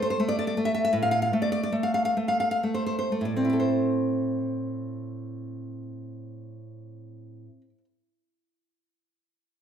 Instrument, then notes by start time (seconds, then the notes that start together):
nylon-string guitar
Already playing: A3
0.02 C5
0.10 C5
0.20 A3
0.28 D5
0.39 D5
0.47 D5
0.57 A3
0.65 E5
0.74 E5
0.85 E5
0.93 A2
1.02 F5
1.11 F5
1.22 F5
1.33 A3
1.42 D5
1.52 D5
1.63 D5
1.72 A3
1.83 F5
1.94 F5
2.05 F5
2.17 A3
2.28 F5
2.40 F5
2.51 F5
2.63 A3
2.74 C5
2.86 C5
2.99 C5
3.12 A3
3.21 A2
3.25 D5
3.36 C4 D5
3.45 E4
3.50 A4 D5
3.60 C5